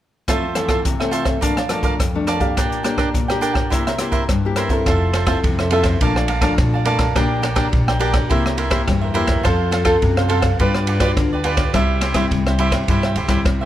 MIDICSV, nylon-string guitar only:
0, 0, Header, 1, 2, 480
1, 0, Start_track
1, 0, Key_signature, -1, "major"
1, 0, Tempo, 573066
1, 235, Time_signature, 4, 2, 24, 8
1, 11436, End_track
2, 0, Start_track
2, 0, Title_t, "Nylon-string guitar"
2, 0, Program_c, 0, 24
2, 234, Note_on_c, 0, 41, 58
2, 236, Note_on_c, 0, 52, 44
2, 237, Note_on_c, 0, 57, 51
2, 242, Note_on_c, 0, 60, 53
2, 377, Note_off_c, 0, 52, 0
2, 378, Note_off_c, 0, 57, 0
2, 379, Note_off_c, 0, 60, 0
2, 461, Note_on_c, 0, 52, 50
2, 465, Note_on_c, 0, 57, 47
2, 469, Note_on_c, 0, 60, 52
2, 691, Note_off_c, 0, 41, 0
2, 713, Note_on_c, 0, 48, 54
2, 790, Note_off_c, 0, 52, 0
2, 792, Note_off_c, 0, 57, 0
2, 794, Note_off_c, 0, 60, 0
2, 838, Note_on_c, 0, 52, 50
2, 841, Note_on_c, 0, 57, 58
2, 847, Note_on_c, 0, 60, 67
2, 1159, Note_off_c, 0, 52, 0
2, 1159, Note_off_c, 0, 57, 0
2, 1163, Note_off_c, 0, 60, 0
2, 1170, Note_off_c, 0, 48, 0
2, 1189, Note_on_c, 0, 46, 55
2, 1192, Note_on_c, 0, 53, 51
2, 1194, Note_on_c, 0, 57, 49
2, 1196, Note_on_c, 0, 62, 59
2, 1334, Note_off_c, 0, 53, 0
2, 1336, Note_off_c, 0, 62, 0
2, 1337, Note_off_c, 0, 57, 0
2, 1420, Note_on_c, 0, 53, 43
2, 1428, Note_on_c, 0, 57, 51
2, 1430, Note_on_c, 0, 62, 53
2, 1649, Note_off_c, 0, 46, 0
2, 1654, Note_off_c, 0, 53, 0
2, 1655, Note_off_c, 0, 57, 0
2, 1658, Note_off_c, 0, 62, 0
2, 1669, Note_on_c, 0, 41, 70
2, 1798, Note_on_c, 0, 53, 47
2, 1805, Note_on_c, 0, 57, 57
2, 1806, Note_on_c, 0, 62, 55
2, 1999, Note_off_c, 0, 53, 0
2, 2001, Note_off_c, 0, 57, 0
2, 2003, Note_off_c, 0, 62, 0
2, 2014, Note_on_c, 0, 58, 48
2, 2017, Note_on_c, 0, 62, 55
2, 2018, Note_on_c, 0, 67, 59
2, 2129, Note_off_c, 0, 41, 0
2, 2151, Note_on_c, 0, 46, 56
2, 2347, Note_off_c, 0, 58, 0
2, 2348, Note_off_c, 0, 62, 0
2, 2349, Note_off_c, 0, 67, 0
2, 2383, Note_on_c, 0, 58, 49
2, 2387, Note_on_c, 0, 62, 54
2, 2391, Note_on_c, 0, 67, 60
2, 2610, Note_off_c, 0, 46, 0
2, 2615, Note_off_c, 0, 58, 0
2, 2617, Note_off_c, 0, 62, 0
2, 2618, Note_off_c, 0, 67, 0
2, 2639, Note_on_c, 0, 46, 54
2, 2765, Note_on_c, 0, 58, 46
2, 2770, Note_on_c, 0, 62, 56
2, 2773, Note_on_c, 0, 67, 61
2, 3083, Note_off_c, 0, 58, 0
2, 3085, Note_off_c, 0, 62, 0
2, 3086, Note_off_c, 0, 67, 0
2, 3094, Note_off_c, 0, 46, 0
2, 3116, Note_on_c, 0, 48, 64
2, 3120, Note_on_c, 0, 58, 41
2, 3122, Note_on_c, 0, 64, 49
2, 3124, Note_on_c, 0, 67, 54
2, 3259, Note_off_c, 0, 58, 0
2, 3260, Note_off_c, 0, 64, 0
2, 3262, Note_off_c, 0, 67, 0
2, 3351, Note_on_c, 0, 58, 45
2, 3357, Note_on_c, 0, 64, 51
2, 3360, Note_on_c, 0, 67, 57
2, 3572, Note_off_c, 0, 48, 0
2, 3579, Note_off_c, 0, 58, 0
2, 3582, Note_off_c, 0, 64, 0
2, 3584, Note_off_c, 0, 67, 0
2, 3598, Note_on_c, 0, 43, 65
2, 3726, Note_on_c, 0, 58, 55
2, 3732, Note_on_c, 0, 64, 52
2, 3737, Note_on_c, 0, 67, 61
2, 3923, Note_off_c, 0, 58, 0
2, 3926, Note_off_c, 0, 64, 0
2, 3928, Note_off_c, 0, 67, 0
2, 3937, Note_on_c, 0, 60, 48
2, 3941, Note_on_c, 0, 64, 53
2, 3946, Note_on_c, 0, 69, 52
2, 4054, Note_off_c, 0, 43, 0
2, 4079, Note_on_c, 0, 53, 52
2, 4268, Note_off_c, 0, 60, 0
2, 4271, Note_off_c, 0, 64, 0
2, 4273, Note_off_c, 0, 69, 0
2, 4416, Note_on_c, 0, 60, 55
2, 4420, Note_on_c, 0, 64, 57
2, 4424, Note_on_c, 0, 69, 63
2, 4534, Note_off_c, 0, 53, 0
2, 4558, Note_on_c, 0, 48, 57
2, 4748, Note_off_c, 0, 60, 0
2, 4749, Note_off_c, 0, 64, 0
2, 4752, Note_off_c, 0, 69, 0
2, 4788, Note_on_c, 0, 60, 50
2, 4793, Note_on_c, 0, 64, 53
2, 4798, Note_on_c, 0, 69, 53
2, 4994, Note_off_c, 0, 60, 0
2, 4997, Note_off_c, 0, 64, 0
2, 4998, Note_off_c, 0, 69, 0
2, 5013, Note_off_c, 0, 48, 0
2, 5031, Note_on_c, 0, 46, 54
2, 5034, Note_on_c, 0, 53, 50
2, 5038, Note_on_c, 0, 57, 52
2, 5038, Note_on_c, 0, 62, 58
2, 5259, Note_off_c, 0, 53, 0
2, 5262, Note_off_c, 0, 62, 0
2, 5263, Note_off_c, 0, 57, 0
2, 5375, Note_on_c, 0, 53, 60
2, 5378, Note_on_c, 0, 57, 50
2, 5382, Note_on_c, 0, 62, 67
2, 5490, Note_off_c, 0, 46, 0
2, 5516, Note_on_c, 0, 41, 55
2, 5708, Note_off_c, 0, 53, 0
2, 5709, Note_off_c, 0, 57, 0
2, 5711, Note_off_c, 0, 62, 0
2, 5747, Note_on_c, 0, 53, 46
2, 5751, Note_on_c, 0, 57, 56
2, 5752, Note_on_c, 0, 62, 54
2, 5893, Note_off_c, 0, 53, 0
2, 5894, Note_off_c, 0, 57, 0
2, 5895, Note_off_c, 0, 62, 0
2, 5972, Note_off_c, 0, 41, 0
2, 5990, Note_on_c, 0, 46, 55
2, 5990, Note_on_c, 0, 58, 56
2, 5993, Note_on_c, 0, 62, 50
2, 5998, Note_on_c, 0, 67, 56
2, 6218, Note_off_c, 0, 58, 0
2, 6220, Note_off_c, 0, 62, 0
2, 6221, Note_off_c, 0, 67, 0
2, 6330, Note_on_c, 0, 58, 58
2, 6333, Note_on_c, 0, 62, 59
2, 6339, Note_on_c, 0, 67, 60
2, 6450, Note_off_c, 0, 46, 0
2, 6464, Note_on_c, 0, 46, 57
2, 6665, Note_off_c, 0, 58, 0
2, 6667, Note_off_c, 0, 62, 0
2, 6668, Note_off_c, 0, 67, 0
2, 6694, Note_on_c, 0, 58, 55
2, 6702, Note_on_c, 0, 62, 53
2, 6705, Note_on_c, 0, 67, 58
2, 6907, Note_off_c, 0, 58, 0
2, 6909, Note_off_c, 0, 62, 0
2, 6912, Note_off_c, 0, 67, 0
2, 6926, Note_off_c, 0, 46, 0
2, 6950, Note_on_c, 0, 58, 54
2, 6952, Note_on_c, 0, 48, 54
2, 6957, Note_on_c, 0, 64, 53
2, 6960, Note_on_c, 0, 67, 59
2, 7178, Note_off_c, 0, 58, 0
2, 7181, Note_off_c, 0, 64, 0
2, 7183, Note_off_c, 0, 67, 0
2, 7292, Note_on_c, 0, 58, 57
2, 7295, Note_on_c, 0, 64, 56
2, 7300, Note_on_c, 0, 67, 57
2, 7410, Note_off_c, 0, 48, 0
2, 7434, Note_on_c, 0, 43, 57
2, 7626, Note_off_c, 0, 58, 0
2, 7627, Note_off_c, 0, 64, 0
2, 7630, Note_off_c, 0, 67, 0
2, 7663, Note_on_c, 0, 58, 50
2, 7669, Note_on_c, 0, 64, 55
2, 7673, Note_on_c, 0, 67, 53
2, 7871, Note_off_c, 0, 58, 0
2, 7874, Note_off_c, 0, 64, 0
2, 7875, Note_off_c, 0, 67, 0
2, 7891, Note_off_c, 0, 43, 0
2, 7917, Note_on_c, 0, 53, 52
2, 7919, Note_on_c, 0, 60, 53
2, 7921, Note_on_c, 0, 65, 52
2, 7929, Note_on_c, 0, 69, 60
2, 8238, Note_off_c, 0, 60, 0
2, 8240, Note_off_c, 0, 65, 0
2, 8244, Note_off_c, 0, 69, 0
2, 8257, Note_on_c, 0, 60, 53
2, 8260, Note_on_c, 0, 65, 66
2, 8263, Note_on_c, 0, 69, 72
2, 8373, Note_off_c, 0, 53, 0
2, 8400, Note_on_c, 0, 48, 51
2, 8588, Note_off_c, 0, 60, 0
2, 8589, Note_off_c, 0, 65, 0
2, 8591, Note_off_c, 0, 69, 0
2, 8624, Note_on_c, 0, 60, 55
2, 8629, Note_on_c, 0, 65, 45
2, 8635, Note_on_c, 0, 69, 55
2, 8771, Note_off_c, 0, 60, 0
2, 8773, Note_off_c, 0, 65, 0
2, 8776, Note_off_c, 0, 69, 0
2, 8853, Note_off_c, 0, 48, 0
2, 8877, Note_on_c, 0, 55, 54
2, 8880, Note_on_c, 0, 62, 58
2, 8882, Note_on_c, 0, 65, 52
2, 8884, Note_on_c, 0, 71, 63
2, 9198, Note_off_c, 0, 62, 0
2, 9200, Note_off_c, 0, 71, 0
2, 9201, Note_off_c, 0, 65, 0
2, 9214, Note_on_c, 0, 62, 53
2, 9221, Note_on_c, 0, 65, 67
2, 9222, Note_on_c, 0, 71, 66
2, 9332, Note_off_c, 0, 55, 0
2, 9356, Note_on_c, 0, 50, 54
2, 9547, Note_off_c, 0, 62, 0
2, 9549, Note_off_c, 0, 65, 0
2, 9550, Note_off_c, 0, 71, 0
2, 9581, Note_on_c, 0, 62, 48
2, 9585, Note_on_c, 0, 65, 50
2, 9589, Note_on_c, 0, 71, 57
2, 9729, Note_off_c, 0, 62, 0
2, 9731, Note_off_c, 0, 65, 0
2, 9731, Note_off_c, 0, 71, 0
2, 9811, Note_off_c, 0, 50, 0
2, 9828, Note_on_c, 0, 48, 54
2, 9828, Note_on_c, 0, 55, 54
2, 9832, Note_on_c, 0, 60, 52
2, 9837, Note_on_c, 0, 64, 61
2, 10152, Note_off_c, 0, 55, 0
2, 10155, Note_off_c, 0, 60, 0
2, 10157, Note_off_c, 0, 64, 0
2, 10170, Note_on_c, 0, 55, 62
2, 10172, Note_on_c, 0, 60, 63
2, 10179, Note_on_c, 0, 64, 62
2, 10287, Note_off_c, 0, 48, 0
2, 10302, Note_off_c, 0, 55, 0
2, 10313, Note_on_c, 0, 55, 53
2, 10505, Note_off_c, 0, 60, 0
2, 10507, Note_off_c, 0, 64, 0
2, 10532, Note_off_c, 0, 55, 0
2, 10542, Note_on_c, 0, 55, 54
2, 10545, Note_on_c, 0, 60, 53
2, 10551, Note_on_c, 0, 64, 51
2, 10750, Note_off_c, 0, 55, 0
2, 10752, Note_off_c, 0, 60, 0
2, 10752, Note_off_c, 0, 64, 0
2, 10790, Note_on_c, 0, 48, 48
2, 10793, Note_on_c, 0, 55, 50
2, 10796, Note_on_c, 0, 64, 60
2, 10797, Note_on_c, 0, 60, 57
2, 11018, Note_off_c, 0, 55, 0
2, 11018, Note_off_c, 0, 60, 0
2, 11020, Note_off_c, 0, 64, 0
2, 11124, Note_on_c, 0, 55, 63
2, 11127, Note_on_c, 0, 60, 58
2, 11132, Note_on_c, 0, 64, 61
2, 11248, Note_off_c, 0, 48, 0
2, 11254, Note_off_c, 0, 55, 0
2, 11264, Note_on_c, 0, 55, 57
2, 11436, Note_off_c, 0, 55, 0
2, 11436, Note_off_c, 0, 60, 0
2, 11436, Note_off_c, 0, 64, 0
2, 11436, End_track
0, 0, End_of_file